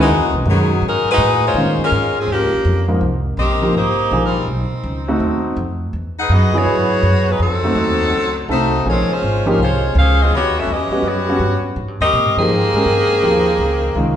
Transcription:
0.01 G#3 D#4 F#4 B4
0.09 E2
0.21 D#2
0.33 B1
0.45 F#2 D#3 G#3 C#4 F#4
0.50 F#3 B3 D#4 G#4
0.82 G#2
0.87 G#3 D#4 F#4 A#4
1.05 muted upright bass stroke
1.11 G#3 D#4 F#4 B4
1.18 A2
1.46 G#3 F4 C5 C#5
1.54 A#2 D#3 G#3 C#4 F4
1.78 muted upright bass stroke
1.84 G#3 C#4 F4 A#4
1.92 G#2
2.20 F3 C4 C#4 G#4
2.27 D#2 C#4
2.32 F3 A#3 G4
2.41 C#2
2.53 A#1
2.65 F2
2.88 G#2 F3 A#3 D#4 A#4
3.01 C2
3.37 A#1 C4 G4 A#4 D#5
3.62 F3 A#3 D#4 G4
3.74 G#1 A#3 D#4 G4 C5
3.98 muted upright bass stroke
4.11 A#1 F3 A#3 D#4 G#4
4.26 G3 C4 D#4 A#4
4.47 B1
4.70 muted upright bass stroke
4.83 C#2
5.08 A3 C4 D#4 F#4
5.20 D#2
5.57 F2
5.93 E2
6.19 D#4 G#4 B4 F#5
6.29 F#2 B3 F#4 G#4 D#5
6.54 F#3 B3 E4 G#4
6.58 B3 F#4 G#4 C#5
6.66 G#2
7.03 F#2
7.29 G#3 D#4 F#4 B4
7.39 F2 F#3 C4 D#4 A4
7.64 A3 C4 D#4 F#4
7.75 D#2
8.12 C#2
8.49 C2 A3 C4 D#4 F#4 A4 C5
8.85 A#1 F3 G#3 A#3 C4 D#4 F4 G#4 C#5
9.09 G#3 C5, muted upright bass stroke
9.13 C#4 F4
9.22 G#1
9.46 F3 G#3 A#3 C#4 D#4 F4 G4 A#4
9.58 C2
9.62 G#3 F4 C5 C#5
9.95 C#2 F5
9.99 C#4 G#4 C5
10.22 C4 F4 G#4 D#5
10.30 D#2 B3 F#4 G4
10.35 C#5
10.59 C#4 F#4 A4 E5
10.67 E2
10.71 C#4 G4 B4 D#5
10.90 G3 B3 C#4 F#4, muted upright bass stroke
11.03 F#2
11.07 B3 F#4 G4 C#5
11.29 G3 B3 C#4 F#4
11.39 G2
11.76 G#2
11.88 G2
12.00 D#2 C4 G4 A#4 D#5
12.13 A#2
12.25 G#2
12.37 G2 D#3 F3 A#3 C4 D#4 G4 G#4
12.49 G#2
12.73 G#3 C#4 G4 A#4, muted upright bass stroke
12.85 G2
13.22 D#2 F3 A#3 D#4 G4
13.58 C#2
13.95 C2 D#3 G#3 C#4 F4

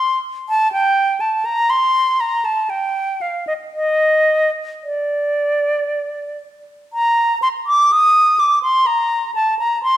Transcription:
Already playing: C6
0.49 A5
0.72 G5
1.20 A5
1.45 A#5
1.70 C6
2.20 A#5
2.45 A5
2.70 G5
3.21 F5
3.47 D#5
3.74 D#5
4.83 D5
6.93 A#5
7.42 C6
7.67 D6
7.92 D#6
8.39 D6
8.63 C6
8.86 A#5
9.35 A5
9.59 A#5
9.83 C6

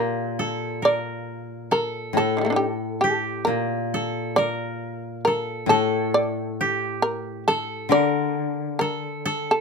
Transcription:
Already playing: A#2 G4 A4 A#4
0.39 A4
0.82 A#4 D5
1.71 A4 A#4
2.13 A2 A4
2.18 A4
2.37 D3 D#3
2.41 G3 A3
2.46 A#3 D4
2.52 D#4 G4
3.01 G4 A4
3.45 A#2 A#4
3.94 A4
4.36 A#4 D5
5.25 A4 A#4
5.66 A2 A4
6.14 D5
6.61 G4
7.02 A#4
7.48 A4
7.89 D3 A#4 D5
8.79 A4 A#4
9.26 A4
9.51 A4

